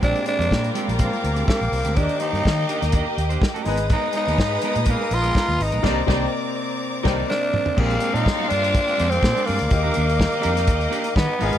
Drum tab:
CC |----------------|----------------|----------------|x---------x-----|
HH |xxxx-xxxxxxx-xox|xxxx--xxx-xx-xox|x-xx--xxx-xx--ox|----------------|
SD |----o-------o---|----o--o----o---|----o-------o---|o-o-------o-o---|
T2 |----------------|----------------|----------------|--------------o-|
FT |----------------|----------------|----------------|---------------o|
BD |o---o---o---o---|o---o---o---o---|o---o---o---o---|o-o-------o-----|

CC |x---------------|----------------|
HH |-xxx--xxxxxx-xox|x-xx-xxxxxxx--ox|
SD |----o-------o---|----o--o----o---|
T2 |----------------|----------------|
FT |----------------|----------------|
BD |o---o---o---o---|o---o---o---o---|